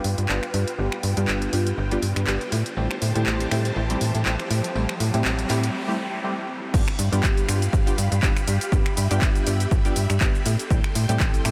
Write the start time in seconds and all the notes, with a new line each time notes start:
Already playing: F4 B4 G5, riser
0.04 G2, open hi-hat
0.18 G2, closed hi-hat
0.29 G1 G3 B3 D4 F4 G4, clap
0.43 finger snap, closed hi-hat
0.53 G2, open hi-hat, tambourine
0.68 closed hi-hat, tambourine
0.78 G1 G3 B3 D4 F4 G4, tambourine
0.92 finger snap
1.02 G2, open hi-hat, tambourine
1.17 G2 G3 B3 D4 F4 G4, closed hi-hat, tambourine
1.28 G1, clap, tambourine
1.42 closed hi-hat, tambourine
1.53 G2 G3 B3 D4 F4 G4, open hi-hat, tambourine
1.66 closed hi-hat, tambourine
1.78 G1, tambourine
1.91 G3 B3 D4 F4 G4, closed hi-hat, tambourine
2.02 G2, open hi-hat, tambourine
2.16 G2, finger snap, closed hi-hat, tambourine
2.27 G1 G3 B3 D4 F4 G4, clap, tambourine
2.40 closed hi-hat, tambourine
2.52 A2 G4 C5 A5, open hi-hat, tambourine
2.66 closed hi-hat, tambourine
2.76 A1 G3 A3 C4 E4 G4, tambourine
2.91 finger snap, tambourine
3.02 A2, open hi-hat, tambourine
3.15 A2 G3 A3 C4 E4 G4, closed hi-hat, tambourine
3.26 A1, clap, tambourine
3.40 closed hi-hat, tambourine
3.51 A2 G3 A3 C4 E4 G4, finger snap, open hi-hat, tambourine
3.65 closed hi-hat, tambourine
3.76 A1, tambourine
3.90 G3 A3 C4 E4 G4, closed hi-hat, tambourine
4.01 A2, open hi-hat, tambourine
4.15 A2, closed hi-hat, tambourine
4.26 A1 G3 A3 C4 E4 G4, clap, tambourine
4.39 finger snap, closed hi-hat
4.50 A2, open hi-hat, tambourine
4.64 closed hi-hat, tambourine
4.75 A1 G3 A3 C4 E4 G4, tambourine, noise sweep
4.89 finger snap, tambourine
5.00 A2, open hi-hat, tambourine
5.13 A2 G3 A3 C4 E4 G4, closed hi-hat, tambourine
5.25 A1, clap, tambourine
5.39 closed hi-hat, tambourine
5.49 A2 G3 A3 C4 E4 G4, clap, open hi-hat, tambourine
5.63 closed hi-hat, tambourine
5.88 G3 A3 C4 E4 G4
6.24 G3 A3 C4 E4 G4
6.74 G1 G3 B3 D4 F4 G4 F5 B5, kick, crash, shaker
6.88 finger snap, closed hi-hat
6.99 G2, open hi-hat, shaker
7.12 G2 G3 B3 D4 F4 G4, closed hi-hat, shaker
7.23 G1, kick, clap, shaker
7.37 closed hi-hat, shaker
7.48 G2 G3 B3 D4 F4 G4, finger snap, open hi-hat, shaker
7.62 closed hi-hat, shaker
7.73 G1, kick, shaker
7.86 G3 B3 D4 F4 G4, closed hi-hat, shaker
7.98 G2, open hi-hat, shaker
8.12 G2, closed hi-hat, shaker
8.23 G1 G3 B3 D4 F4 G4, kick, clap, shaker
8.37 finger snap, shaker
8.48 G2, open hi-hat, shaker
8.61 closed hi-hat, shaker
8.72 G1 G3 B3 D4 F4 G4 E5, kick, shaker
8.86 finger snap, closed hi-hat
8.97 G2, open hi-hat, shaker
9.10 G2 G3 B3 D4 F4 G4, closed hi-hat, shaker
9.21 G1, kick, clap, shaker
9.35 closed hi-hat, shaker
9.46 G2 G3 B3 D4 F4 G4, open hi-hat, shaker
9.60 closed hi-hat, shaker
9.71 G1, kick, shaker
9.85 G3 B3 D4 F4 G4, closed hi-hat, shaker
9.96 G2, open hi-hat, shaker
10.10 G2, finger snap, closed hi-hat, shaker
10.21 G1 G3 B3 D4 F4 G4, kick, clap, shaker
10.35 shaker
10.46 A2 A4 G5 C6, open hi-hat, shaker
10.59 closed hi-hat, shaker
10.70 A1 G3 A3 C4 E4 G4, kick, shaker
10.84 finger snap, closed hi-hat
10.95 A2, open hi-hat, shaker
11.09 A2 G3 A3 C4 E4 G4, closed hi-hat, shaker
11.20 A1, kick, clap, shaker
11.34 closed hi-hat, shaker
11.45 A2 G3 A3 C4 E4 G4, finger snap, open hi-hat, shaker